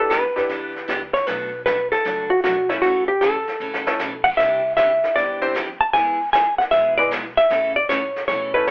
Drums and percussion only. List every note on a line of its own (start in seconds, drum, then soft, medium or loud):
0.11 kick soft
0.11 snare medium
0.11 hi-hat pedal medium
0.37 snare soft
0.50 brush sweep soft
0.50 kick soft
0.50 snare soft
0.76 snare soft
0.89 kick soft
0.89 snare medium
0.89 hi-hat pedal medium
1.15 snare soft
1.27 brush sweep soft
1.27 kick soft
1.27 snare soft
1.66 kick soft
1.66 snare medium
1.66 hi-hat pedal medium
1.92 snare soft
2.05 brush sweep soft
2.05 kick soft
2.05 snare soft
2.44 kick soft
2.44 snare medium
2.44 hi-hat pedal medium
2.70 snare soft
2.83 brush sweep soft
2.83 kick soft
2.83 snare soft
3.22 kick soft
3.22 snare medium
3.22 hi-hat pedal medium
3.48 snare soft
3.74 snare medium
3.87 snare medium
4.00 snare medium
4.00 hi-hat pedal medium
4.25 kick medium
4.25 crash medium
4.38 brush sweep medium
4.38 kick soft
4.38 snare soft
4.77 kick soft
4.77 snare medium
4.77 hi-hat pedal medium
5.04 snare soft
5.16 brush sweep medium
5.16 kick soft
5.16 snare soft
5.55 kick soft
5.55 snare medium
5.55 hi-hat pedal medium
5.94 brush sweep soft
5.94 kick soft
5.94 snare soft
6.33 kick soft
6.33 snare medium
6.33 hi-hat pedal medium
6.60 snare soft
6.72 brush sweep soft
6.72 kick soft
6.72 snare soft
7.12 kick soft
7.12 snare medium
7.12 hi-hat pedal medium
7.38 snare soft
7.51 brush sweep medium
7.51 kick soft
7.51 snare soft
7.89 kick soft
7.89 snare medium
7.89 hi-hat pedal medium
8.16 snare soft
8.28 brush sweep soft
8.28 kick soft
8.28 snare soft
8.67 kick soft
8.67 snare medium
8.67 hi-hat pedal medium